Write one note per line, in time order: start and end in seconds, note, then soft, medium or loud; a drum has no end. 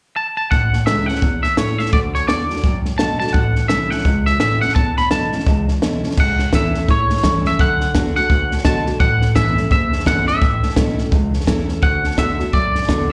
0.16 0.36 A5 medium
0.37 0.50 A5 medium
0.51 0.72 A1 medium
0.51 1.19 A2 medium
0.51 0.86 F#5 medium
0.51 kick loud
0.51 snare soft
0.73 0.80 A1 soft
0.73 snare soft
0.86 1.07 C#2 medium
0.86 1.07 E3 medium
0.86 1.08 A3 medium
0.86 1.08 C#4 medium
0.86 1.07 E4 medium
0.86 1.06 E5 medium
0.86 snare loud
0.86 hi-hat pedal medium
1.06 1.14 C#2 soft
1.06 1.22 E4 medium
1.06 1.42 F#5 medium
1.06 snare soft
1.10 1.23 C#4 soft
1.15 snare soft
1.22 1.90 E2 medium
1.22 1.42 E2 medium
1.22 kick loud
1.22 snare soft
1.43 1.49 E2 soft
1.43 1.57 E5 medium
1.43 snare soft
1.57 1.78 A2 medium
1.57 1.91 E3 medium
1.57 1.92 A3 medium
1.57 1.92 C#4 medium
1.57 1.92 E4 medium
1.57 1.78 C#5 medium
1.57 snare loud
1.57 hi-hat pedal medium
1.78 1.85 A2 soft
1.78 1.93 E5 medium
1.78 snare soft
1.86 snare soft
1.92 2.13 D2 medium
1.92 2.26 D3 medium
1.92 1.99 D5 medium
1.92 kick loud
1.92 snare soft
2.15 2.20 D2 soft
2.15 2.27 C#5 medium
2.15 snare soft
2.27 2.49 E2 medium
2.27 2.49 D3 medium
2.27 2.49 A3 medium
2.27 2.49 D4 medium
2.27 2.48 F#4 medium
2.27 2.81 D5 medium
2.27 snare loud
2.27 hi-hat pedal medium
2.49 2.56 E2 soft
2.49 2.64 D4 soft
2.49 2.63 F#4 medium
2.49 snare soft
2.57 snare soft
2.64 2.84 F#2 medium
2.64 3.32 A2 medium
2.64 kick loud
2.64 snare soft
2.85 2.91 F#2 soft
2.85 snare soft
2.98 3.20 B1 loud
2.98 3.19 D3 medium
2.98 3.20 A3 medium
2.98 3.20 D4 medium
2.98 3.19 F#4 medium
2.98 3.18 A5 loud
2.98 snare loud
2.98 hi-hat pedal medium
3.20 3.27 B1 soft
3.20 3.35 D4 medium
3.20 3.34 F#4 medium
3.20 3.33 A5 loud
3.20 snare soft
3.27 snare soft
3.33 3.55 A1 medium
3.33 4.02 A2 medium
3.33 3.68 F#5 medium
3.33 kick loud
3.33 snare soft
3.56 3.62 A1 soft
3.56 snare soft
3.68 3.90 C2 medium
3.68 3.90 E3 medium
3.68 3.91 A3 medium
3.68 3.91 C#4 medium
3.68 3.89 E4 medium
3.68 3.90 E5 medium
3.68 snare loud
3.68 hi-hat pedal medium
3.90 3.97 C2 soft
3.90 4.05 C#4 soft
3.90 4.04 E4 medium
3.90 4.26 F#5 medium
3.90 snare soft
3.98 snare soft
4.05 4.25 C#2 medium
4.05 4.73 E2 medium
4.05 kick loud
4.05 snare soft
4.26 4.32 C#2 soft
4.26 4.39 E5 medium
4.26 snare soft
4.39 4.60 A1 loud
4.39 4.61 E3 medium
4.39 4.61 A3 medium
4.39 4.62 C#4 medium
4.39 4.60 E4 medium
4.39 4.61 E5 loud
4.39 snare loud
4.39 hi-hat pedal medium
4.61 4.67 A1 soft
4.61 4.76 C#4 soft
4.61 4.75 E4 medium
4.61 4.74 F#5 loud
4.61 snare soft
4.69 snare soft
4.75 4.96 E2 medium
4.75 5.44 A2 medium
4.75 4.97 A5 loud
4.75 kick loud
4.75 snare soft
4.97 5.03 E2 soft
4.97 5.11 B5 loud
4.97 snare soft
5.11 5.30 B1 medium
5.11 5.32 E3 medium
5.11 5.32 A3 medium
5.11 5.33 C#4 medium
5.11 5.31 E4 medium
5.11 5.64 A5 medium
5.11 snare loud
5.11 hi-hat pedal medium
5.32 5.38 B1 soft
5.32 5.47 C#4 soft
5.32 5.46 E4 medium
5.32 snare soft
5.40 snare soft
5.46 5.66 C#2 medium
5.46 6.15 E2 medium
5.46 kick loud
5.46 snare soft
5.68 5.74 C#2 soft
5.68 snare soft
5.82 6.02 B1 medium
5.82 6.03 E3 medium
5.82 6.03 A3 medium
5.82 6.04 C#4 medium
5.82 6.02 E4 medium
5.82 snare loud
5.82 hi-hat pedal medium
6.03 6.09 B1 soft
6.03 6.18 C#4 medium
6.03 6.17 E4 medium
6.03 snare soft
6.11 snare soft
6.17 6.38 C#2 medium
6.17 6.86 A2 medium
6.17 6.55 F#5 loud
6.17 kick loud
6.17 snare soft
6.17 crash loud
6.39 6.45 C#2 soft
6.39 snare soft
6.52 6.73 E2 medium
6.52 6.73 E3 medium
6.52 6.74 A3 medium
6.52 6.74 C#4 loud
6.52 6.73 E4 loud
6.52 6.87 E5 medium
6.52 kick medium
6.52 snare loud
6.52 hi-hat pedal medium
6.75 6.82 E2 soft
6.75 6.89 C#4 soft
6.75 6.88 E4 medium
6.75 snare soft
6.88 7.57 E2 medium
6.88 7.09 A2 medium
6.88 7.47 C#5 medium
6.88 kick loud
6.88 snare soft
7.10 7.16 A2 soft
7.10 snare soft
7.17 snare soft
7.23 7.44 G2 medium
7.23 7.44 E3 medium
7.23 7.44 A3 medium
7.23 7.45 C#4 loud
7.23 7.44 E4 medium
7.23 kick medium
7.23 snare loud
7.23 hi-hat pedal medium
7.45 7.51 G2 soft
7.45 7.59 C#4 soft
7.45 7.59 E4 medium
7.45 7.60 E5 medium
7.45 snare soft
7.59 7.80 F#2 medium
7.59 7.93 D3 loud
7.59 8.15 F#5 loud
7.59 kick loud
7.59 snare soft
7.81 7.87 F#2 soft
7.81 snare soft
7.95 8.15 E2 medium
7.95 8.15 D3 medium
7.95 8.15 A3 medium
7.95 8.16 D4 loud
7.95 8.14 F#4 medium
7.95 kick medium
7.95 snare loud
7.95 hi-hat pedal medium
8.16 8.22 E2 soft
8.16 8.30 D4 medium
8.16 8.29 F#4 medium
8.16 8.65 F#5 loud
8.16 snare soft
8.30 8.50 D2 medium
8.30 8.98 A2 medium
8.30 kick loud
8.30 snare soft
8.51 8.57 D2 soft
8.51 snare soft
8.58 snare soft
8.64 8.85 B1 loud
8.64 8.85 D3 medium
8.64 8.86 A3 medium
8.64 8.86 D4 medium
8.64 8.84 F#4 loud
8.64 9.00 A5 loud
8.64 kick medium
8.64 snare loud
8.64 hi-hat pedal medium
8.86 8.94 B1 soft
8.86 9.00 D4 soft
8.86 8.99 F#4 medium
8.86 snare soft
9.00 9.20 A1 medium
9.00 9.68 A2 loud
9.00 9.35 F#5 loud
9.00 kick loud
9.00 snare soft
9.22 9.29 A1 soft
9.22 snare soft
9.35 9.56 G1 medium
9.35 9.56 E3 medium
9.35 9.56 A3 medium
9.35 9.57 C#4 medium
9.35 9.55 E4 loud
9.35 9.69 E5 medium
9.35 kick medium
9.35 snare loud
9.35 hi-hat pedal medium
9.56 9.63 G1 soft
9.56 9.71 C#4 soft
9.56 9.70 E4 medium
9.56 snare soft
9.70 9.92 F#1 medium
9.70 10.39 E2 medium
9.70 10.07 E5 medium
9.70 kick loud
9.70 snare soft
9.93 9.98 F#1 soft
9.93 snare soft
10.00 snare soft
10.05 10.27 G1 loud
10.05 10.26 E3 medium
10.05 10.27 A3 medium
10.05 10.27 C#4 medium
10.05 10.26 E4 medium
10.05 10.27 F#5 medium
10.05 kick medium
10.05 snare loud
10.05 hi-hat pedal medium
10.27 10.34 G1 soft
10.27 10.42 C#4 soft
10.27 10.41 E4 medium
10.27 10.94 E5 medium
10.27 snare soft
10.41 10.62 A1 medium
10.41 11.09 A2 medium
10.41 kick loud
10.41 snare soft
10.63 10.69 A1 soft
10.63 snare soft
10.70 snare soft
10.76 10.98 B1 medium
10.76 10.97 E3 medium
10.76 10.98 A3 medium
10.76 10.98 C#4 medium
10.76 10.96 E4 medium
10.76 kick medium
10.76 snare loud
10.76 hi-hat pedal medium
10.98 11.05 B1 soft
10.98 11.12 C#4 soft
10.98 11.11 E4 medium
10.98 snare soft
11.11 11.33 C#2 medium
11.11 11.80 E2 medium
11.11 kick loud
11.11 snare soft
11.34 11.39 C#2 soft
11.34 snare soft
11.40 snare soft
11.46 11.68 E2 medium
11.46 11.68 E3 medium
11.46 11.68 A3 medium
11.46 11.68 C#4 medium
11.46 11.67 E4 loud
11.46 kick medium
11.46 snare loud
11.46 hi-hat pedal medium
11.68 11.75 E2 soft
11.68 11.83 C#4 soft
11.68 11.82 E4 medium
11.68 snare soft
11.82 12.03 D2 medium
11.82 12.16 D3 medium
11.82 12.18 F#5 medium
11.82 kick loud
11.82 snare soft
12.04 12.10 D2 soft
12.04 snare soft
12.11 snare soft
12.17 12.38 E2 medium
12.17 12.38 D3 medium
12.17 12.38 A3 medium
12.17 12.39 D4 medium
12.17 12.37 F#4 loud
12.17 12.55 E5 medium
12.17 kick medium
12.17 snare loud
12.17 hi-hat pedal medium
12.39 12.45 E2 soft
12.39 12.53 D4 medium
12.39 12.52 F#4 medium
12.39 snare soft
12.53 12.73 F#2 medium
12.53 13.12 A2 medium
12.53 13.12 D5 medium
12.53 kick loud
12.53 snare soft
12.75 12.80 F#2 soft
12.75 snare soft
12.82 snare soft
12.88 13.09 E2 loud
12.88 13.09 D3 loud
12.88 13.09 A3 medium
12.88 13.10 D4 medium
12.88 13.08 F#4 loud
12.88 kick medium
12.88 snare loud
12.88 hi-hat pedal medium